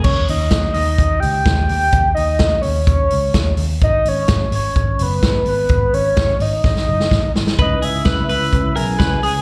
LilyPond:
<<
  \new Staff \with { instrumentName = "Soft synth lead" } { \time 4/4 \key dis \phrygian \tempo 4 = 127 cis''8 dis''4 dis''4 g''4 g''8~ | g''8 dis''4 cis''8 cis''4. r8 | dis''8 cis''4 cis''4 b'4 b'8~ | b'8 cis''4 dis''8 dis''4. r8 |
dis''8 e''4 e''4 gis''4 gis''8 | }
  \new Staff \with { instrumentName = "Clean electric guitar" } { \time 4/4 \key dis \phrygian r1 | r1 | r1 | r1 |
b'8 gis'8 b'8 b'4 ais'8 b'8 gis'8 | }
  \new Staff \with { instrumentName = "Synth keys" } { \time 4/4 \key dis \phrygian r1 | r1 | r1 | r1 |
<cis' e' b'>8 r8 <cis' e' b'>8 r8 <cis' e' b'>8 r8 <cis' e' b'>8 r8 | }
  \new Staff \with { instrumentName = "Picked electric bass" } { \clef bass \time 4/4 \key dis \phrygian dis,8 dis,8 dis,8 dis,8 dis,8 cis,8 dis,8 dis,8 | dis,8 dis,8 dis,8 dis,8 dis,8 cis,8 dis,8 dis,8 | gis,,8 gis,,8 gis,,8 gis,,8 gis,,8 fis,,8 gis,,8 gis,,8 | gis,,8 gis,,8 gis,,8 gis,,8 gis,,8 fis,,8 gis,,8 gis,,8 |
cis,8 cis,8 cis,8 cis,8 cis,8 b,,8 cis,8 cis,8 | }
  \new DrumStaff \with { instrumentName = "Drums" } \drummode { \time 4/4 <cymc bd>8 hho8 <hh bd sn>8 hho8 <hh bd>8 hho8 <hh bd sn>8 hho8 | <hh bd>8 hho8 <hh bd sn>8 hho8 <hh bd>8 hho8 <hh bd sn>8 hho8 | <hh bd>8 hho8 <hh bd sn>8 hho8 <hh bd>8 hho8 <hh bd sn>8 hho8 | <hh bd>8 hho8 <hh bd sn>8 hho8 <bd sn>16 sn8 sn16 <bd sn>8 sn16 sn16 |
<hh bd>8 hho8 <hh bd sn>8 hho8 <hh bd>8 hho8 <hh bd sn>8 hho8 | }
>>